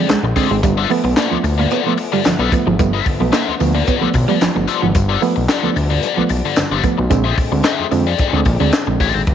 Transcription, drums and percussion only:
0.09 snare, clap, closed hi-hat, tambourine
0.36 kick, open hi-hat, tambourine
0.63 kick, closed hi-hat, tambourine
0.90 open hi-hat
1.17 snare, clap, closed hi-hat, tambourine
1.44 open hi-hat, tambourine
1.71 closed hi-hat, tambourine
1.97 open hi-hat, tambourine
2.24 snare, clap, closed hi-hat, tambourine
2.52 kick, closed hi-hat, tambourine
2.79 kick, closed hi-hat, tambourine
3.06 kick, open hi-hat
3.33 snare, clap, closed hi-hat, tambourine
3.60 open hi-hat, tambourine
3.87 kick, closed hi-hat, tambourine
4.14 kick, open hi-hat, tambourine
4.41 snare, clap, closed hi-hat, tambourine
4.67 closed hi-hat, tambourine
4.95 kick, closed hi-hat, tambourine
5.21 open hi-hat, tambourine
5.49 snare, clap, closed hi-hat, tambourine
5.76 open hi-hat, tambourine
6.03 closed hi-hat, tambourine
6.29 open hi-hat, tambourine
6.56 snare, clap, closed hi-hat, tambourine
6.84 kick, closed hi-hat, tambourine
7.10 kick, closed hi-hat, tambourine
7.38 kick, open hi-hat
7.64 snare, clap, closed hi-hat, tambourine
7.91 open hi-hat, tambourine
8.18 kick, closed hi-hat, tambourine
8.45 kick, open hi-hat, tambourine
8.72 snare, clap, closed hi-hat, tambourine
9.00 kick, open hi-hat, tambourine
9.27 kick, closed hi-hat

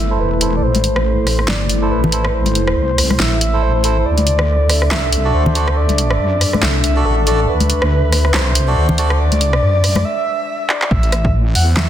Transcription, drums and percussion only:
0.41 closed hi-hat
0.75 closed hi-hat, high conga
0.84 closed hi-hat
0.96 cross-stick
1.27 cross-stick, open hi-hat
1.39 cross-stick
1.48 snare
1.69 closed hi-hat
2.04 low conga
2.12 closed hi-hat
2.25 cross-stick
2.46 closed hi-hat, high conga
2.55 closed hi-hat
2.67 cross-stick
2.98 cross-stick, open hi-hat
3.10 cross-stick, high conga
3.20 snare
3.41 closed hi-hat
3.84 closed hi-hat
4.18 closed hi-hat, high conga
4.27 closed hi-hat
4.39 cross-stick
4.70 cross-stick, open hi-hat
4.82 cross-stick
4.91 snare, clap
5.12 closed hi-hat
5.46 low conga
5.55 closed hi-hat
5.68 cross-stick
5.89 closed hi-hat, high conga
5.98 closed hi-hat
6.10 cross-stick
6.41 cross-stick, open hi-hat
6.53 cross-stick, high conga
6.62 snare, clap
6.84 closed hi-hat
7.27 closed hi-hat
7.60 closed hi-hat, high conga
7.70 closed hi-hat
7.82 cross-stick
8.12 cross-stick, open hi-hat
8.25 cross-stick
8.34 snare, clap
8.55 closed hi-hat
8.89 low conga
8.98 closed hi-hat
9.10 cross-stick
9.32 closed hi-hat, high conga
9.41 closed hi-hat
9.53 cross-stick
9.84 cross-stick, open hi-hat
9.95 cross-stick, high conga
10.69 clap
10.82 clap
10.91 kick
11.03 closed hi-hat
11.12 cross-stick, closed hi-hat
11.25 kick
11.55 open hi-hat
11.77 snare, clap

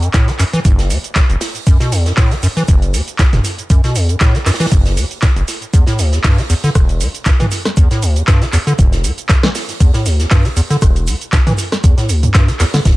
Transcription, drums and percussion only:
0.03 closed hi-hat, cabasa
0.14 kick, snare, clap, closed hi-hat, cabasa, shaker
0.27 snare, closed hi-hat, cabasa
0.39 clap, open hi-hat, cabasa, shaker
0.53 snare, closed hi-hat, cabasa
0.65 kick, closed hi-hat, mid tom, cabasa, shaker
0.79 snare, closed hi-hat, cabasa
0.90 open hi-hat, cabasa, shaker
1.04 closed hi-hat, cabasa
1.15 kick, snare, clap, closed hi-hat, cabasa, shaker
1.30 closed hi-hat, cabasa
1.41 snare, open hi-hat, cabasa
1.55 closed hi-hat, cabasa
1.66 kick, closed hi-hat, cabasa, shaker
1.80 snare, closed hi-hat, cabasa
1.92 snare, open hi-hat, cabasa, shaker
2.06 snare, closed hi-hat, cabasa
2.17 kick, snare, clap, closed hi-hat, open hi-hat, cabasa
2.31 snare, closed hi-hat, cabasa
2.43 open hi-hat, cabasa, shaker
2.57 snare, closed hi-hat, cabasa
2.68 kick, closed hi-hat, cabasa, shaker
2.82 closed hi-hat, cabasa
2.94 open hi-hat, cabasa, shaker
3.08 closed hi-hat, cabasa
3.19 kick, snare, clap, closed hi-hat, cabasa, shaker
3.33 snare, closed hi-hat, mid tom, cabasa
3.44 snare, open hi-hat, cabasa, shaker
3.58 closed hi-hat, cabasa
3.70 kick, closed hi-hat, cabasa, shaker
3.84 snare, closed hi-hat, cabasa
3.95 open hi-hat, cabasa, shaker
4.09 closed hi-hat, cabasa
4.20 kick, snare, clap, closed hi-hat, cabasa, shaker
4.35 snare, closed hi-hat, cabasa
4.46 snare, clap, open hi-hat, cabasa
4.54 snare, open hi-hat
4.60 snare, open hi-hat, cabasa
4.66 snare, open hi-hat
4.72 kick, closed hi-hat, mid tom, cabasa, shaker
4.86 snare, closed hi-hat, cabasa
4.97 open hi-hat, cabasa, shaker
5.11 closed hi-hat, cabasa
5.22 kick, snare, clap, closed hi-hat, cabasa, shaker
5.36 closed hi-hat, cabasa
5.48 snare, open hi-hat, cabasa, shaker
5.62 closed hi-hat, cabasa
5.74 kick, closed hi-hat, cabasa, shaker
5.87 snare, closed hi-hat, cabasa
5.99 snare, open hi-hat, cabasa, shaker
6.12 snare, closed hi-hat, cabasa
6.24 kick, snare, clap, closed hi-hat, open hi-hat, cabasa
6.38 snare, closed hi-hat, cabasa
6.50 open hi-hat, cabasa, shaker
6.64 snare, closed hi-hat, cabasa
6.75 kick, cross-stick, closed hi-hat, cabasa, shaker
6.89 closed hi-hat, cabasa
7.01 open hi-hat, cabasa, shaker
7.14 closed hi-hat, cabasa
7.25 kick, snare, clap, closed hi-hat, cabasa, shaker
7.39 snare, closed hi-hat, mid tom, cabasa
7.51 snare, open hi-hat, cabasa, shaker
7.65 cross-stick, snare, closed hi-hat, cabasa
7.77 kick, closed hi-hat, cabasa, shaker
7.91 snare, closed hi-hat, cabasa
8.02 open hi-hat, cabasa, shaker
8.16 closed hi-hat, cabasa
8.27 kick, snare, clap, closed hi-hat, cabasa, shaker
8.42 snare, closed hi-hat, cabasa
8.53 clap, open hi-hat, cabasa, shaker
8.66 snare, closed hi-hat, cabasa
8.79 kick, closed hi-hat, mid tom, cabasa, shaker
8.92 snare, closed hi-hat, cabasa
9.04 open hi-hat, cabasa, shaker
9.18 closed hi-hat, cabasa
9.29 kick, snare, clap, closed hi-hat, cabasa, shaker
9.43 cross-stick, snare, closed hi-hat, cabasa
9.55 snare, open hi-hat, cabasa
9.69 snare, closed hi-hat, cabasa
9.80 kick, closed hi-hat, cabasa, shaker
9.93 snare, closed hi-hat, cabasa
10.06 snare, open hi-hat, cabasa, shaker
10.20 snare, closed hi-hat, cabasa
10.31 kick, snare, clap, closed hi-hat, open hi-hat, cabasa
10.45 snare, closed hi-hat, cabasa
10.57 open hi-hat, cabasa, shaker
10.70 snare, closed hi-hat, cabasa
10.81 kick, cross-stick, closed hi-hat, cabasa, shaker
10.96 closed hi-hat, cabasa
11.07 open hi-hat, cabasa, shaker
11.21 closed hi-hat, cabasa
11.32 kick, snare, clap, closed hi-hat, cabasa, shaker
11.47 snare, closed hi-hat, mid tom, cabasa
11.57 snare, open hi-hat, cabasa, shaker
11.72 cross-stick, snare, closed hi-hat, cabasa
11.84 kick, closed hi-hat, cabasa, shaker
11.98 snare, closed hi-hat, cabasa
12.09 open hi-hat, cabasa, shaker
12.23 closed hi-hat, mid tom, cabasa
12.34 kick, snare, clap, closed hi-hat, cabasa, shaker
12.48 snare, closed hi-hat, cabasa
12.59 snare, clap, open hi-hat, cabasa
12.74 snare, open hi-hat, cabasa
12.85 kick, snare, closed hi-hat, mid tom, cabasa

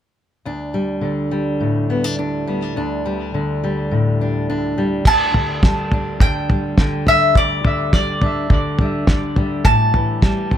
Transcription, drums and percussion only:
5.05 kick, floor tom, crash
5.34 floor tom
5.63 kick, snare, floor tom
5.92 floor tom
6.20 kick, floor tom
6.50 floor tom
6.78 kick, snare, floor tom
7.07 floor tom
7.35 kick, floor tom
7.65 floor tom
7.93 kick, snare, floor tom
8.21 floor tom
8.50 kick, floor tom
8.79 floor tom
9.07 kick, snare, floor tom
9.36 floor tom
9.65 kick, floor tom
9.94 floor tom
10.22 kick, snare, floor tom
10.51 floor tom

